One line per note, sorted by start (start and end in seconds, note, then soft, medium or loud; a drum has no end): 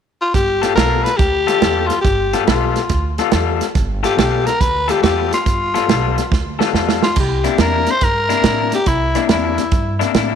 0.21 0.34 F4 medium
0.34 0.61 G1 medium
0.34 0.74 G4 medium
0.34 kick loud
0.34 snare soft
0.34 closed hi-hat medium
0.62 0.75 G3 medium
0.62 0.76 B3 medium
0.62 0.76 F4 medium
0.62 0.76 A4 medium
0.62 snare soft
0.62 closed hi-hat medium
0.76 1.03 B1 medium
0.76 1.09 G3 medium
0.76 1.09 B3 medium
0.76 1.10 F4 medium
0.76 1.10 A4 medium
0.76 1.05 A#4 medium
0.76 snare loud
0.76 closed hi-hat medium
1.04 1.18 B4 medium
1.04 snare soft
1.04 closed hi-hat medium
1.17 1.46 D2 medium
1.17 1.88 G4 loud
1.17 kick loud
1.17 snare soft
1.17 closed hi-hat medium
1.47 1.59 G3 medium
1.47 1.60 B3 medium
1.47 1.60 F4 medium
1.47 1.61 A4 loud
1.47 snare soft
1.47 closed hi-hat medium
1.61 1.89 E2 medium
1.61 1.94 G3 medium
1.61 1.94 B3 medium
1.61 1.94 F4 medium
1.61 1.95 A4 medium
1.61 snare loud
1.61 closed hi-hat medium
1.87 2.00 F4 medium
1.87 snare soft
1.87 closed hi-hat medium
2.01 2.31 G1 medium
2.01 2.42 G4 medium
2.01 kick loud
2.01 closed hi-hat medium
2.05 snare soft
2.33 2.47 G3 medium
2.33 2.46 B3 medium
2.33 2.47 F4 medium
2.33 2.47 A4 medium
2.33 snare soft
2.33 closed hi-hat medium
2.47 2.74 B1 medium
2.47 2.80 G3 medium
2.47 2.80 B3 medium
2.47 3.14 F4 medium
2.47 2.80 F4 medium
2.47 2.80 A4 medium
2.47 snare loud
2.47 closed hi-hat medium
2.76 snare soft
2.76 closed hi-hat medium
2.89 3.17 D2 medium
2.89 kick loud
2.89 snare soft
2.89 closed hi-hat medium
3.18 3.31 G3 medium
3.18 3.31 B3 medium
3.18 3.31 F4 medium
3.18 3.32 A4 medium
3.18 snare soft
3.18 closed hi-hat medium
3.31 3.60 E2 medium
3.31 3.65 G3 medium
3.31 3.65 B3 medium
3.31 3.65 F4 medium
3.31 3.65 A4 medium
3.31 snare loud
3.31 closed hi-hat medium
3.61 snare soft
3.61 closed hi-hat medium
3.75 4.02 G1 medium
3.75 kick loud
3.75 snare soft
3.75 closed hi-hat medium
4.03 4.15 G3 medium
4.03 4.16 B3 medium
4.03 4.17 F4 medium
4.03 4.18 G4 medium
4.03 4.16 A4 loud
4.03 snare soft
4.03 closed hi-hat medium
4.17 4.44 B1 medium
4.17 4.50 G3 medium
4.17 4.50 B3 medium
4.17 4.50 F4 medium
4.17 4.47 G4 medium
4.17 4.50 A4 medium
4.17 snare loud
4.17 closed hi-hat medium
4.46 4.62 A#4 loud
4.46 snare soft
4.46 closed hi-hat medium
4.60 4.88 D2 medium
4.60 4.92 B4 loud
4.60 kick loud
4.60 snare soft
4.60 closed hi-hat medium
4.88 5.01 G3 medium
4.88 5.02 B3 medium
4.88 5.02 F4 medium
4.88 5.02 G4 medium
4.88 5.03 A4 medium
4.88 snare soft
4.88 closed hi-hat medium
5.02 5.30 E2 medium
5.02 5.35 G3 medium
5.02 5.36 B3 medium
5.02 5.36 F4 medium
5.02 5.29 G4 medium
5.02 5.36 A4 medium
5.02 snare loud
5.02 closed hi-hat medium
5.32 6.57 F4 medium
5.32 snare soft
5.32 closed hi-hat medium
5.46 5.73 G1 medium
5.46 kick loud
5.46 snare soft
5.46 closed hi-hat medium
5.74 5.87 G3 medium
5.74 5.88 B3 medium
5.74 5.88 F4 medium
5.74 5.89 A4 medium
5.74 snare soft
5.74 closed hi-hat medium
5.89 6.15 B1 medium
5.89 6.21 G3 medium
5.89 6.22 B3 medium
5.89 6.22 F4 medium
5.89 6.22 A4 medium
5.89 snare loud
5.89 closed hi-hat medium
6.18 snare soft
6.18 closed hi-hat medium
6.31 6.58 D2 medium
6.31 kick loud
6.31 snare medium
6.59 6.72 G3 medium
6.59 6.73 B3 medium
6.59 6.73 F4 medium
6.59 6.73 A4 medium
6.59 snare medium
6.73 7.00 E2 medium
6.73 7.06 G3 medium
6.73 7.07 B3 medium
6.73 7.07 F4 medium
6.73 7.07 A4 medium
6.73 snare medium
6.89 snare medium
7.03 7.16 F4 medium
7.03 snare medium
7.16 7.43 C2 medium
7.16 7.62 G4 medium
7.16 kick loud
7.16 snare soft
7.16 closed hi-hat medium
7.16 splash medium
7.44 7.57 C3 medium
7.44 7.57 A#3 medium
7.44 7.58 D4 medium
7.44 7.58 E4 medium
7.44 snare soft
7.44 closed hi-hat medium
7.58 7.86 E2 medium
7.58 7.91 C3 medium
7.58 7.92 A#3 medium
7.58 7.92 D4 medium
7.58 7.92 E4 medium
7.58 7.92 A#4 loud
7.58 snare loud
7.58 closed hi-hat medium
7.86 snare soft
7.86 closed hi-hat medium
7.91 8.05 C5 loud
8.01 8.29 G2 medium
8.01 8.74 A#4 loud
8.01 kick loud
8.01 snare soft
8.01 closed hi-hat medium
8.29 8.43 C3 medium
8.29 8.43 A#3 medium
8.29 8.43 D4 medium
8.29 8.44 E4 medium
8.29 snare soft
8.29 closed hi-hat medium
8.44 8.71 A2 medium
8.44 8.77 C3 medium
8.44 8.77 A#3 medium
8.44 8.77 D4 medium
8.44 8.77 E4 medium
8.44 snare loud
8.44 closed hi-hat medium
8.72 8.89 G4 loud
8.72 snare soft
8.72 closed hi-hat medium
8.86 9.13 C2 medium
8.86 9.25 E4 medium
8.86 kick loud
8.86 snare soft
8.86 closed hi-hat medium
9.15 9.28 C3 medium
9.15 9.29 A#3 medium
9.15 9.28 D4 medium
9.15 9.29 E4 medium
9.15 snare soft
9.15 closed hi-hat medium
9.28 9.56 E2 medium
9.28 9.62 C3 medium
9.28 9.62 A#3 medium
9.28 9.62 D4 medium
9.28 9.32 D#4 soft
9.28 9.63 E4 medium
9.28 10.01 E4 medium
9.28 snare loud
9.28 closed hi-hat medium
9.58 snare soft
9.58 closed hi-hat medium
9.71 9.99 G2 medium
9.71 kick loud
9.71 snare soft
9.71 closed hi-hat medium
9.99 10.13 C3 medium
9.99 10.14 A#3 medium
9.99 10.14 D4 medium
9.99 10.14 E4 medium
9.99 snare soft
9.99 closed hi-hat medium
10.14 10.35 A2 medium
10.14 10.35 C3 medium
10.14 10.35 A#3 medium
10.14 10.35 D4 medium
10.14 10.35 E4 medium
10.14 snare loud
10.14 closed hi-hat medium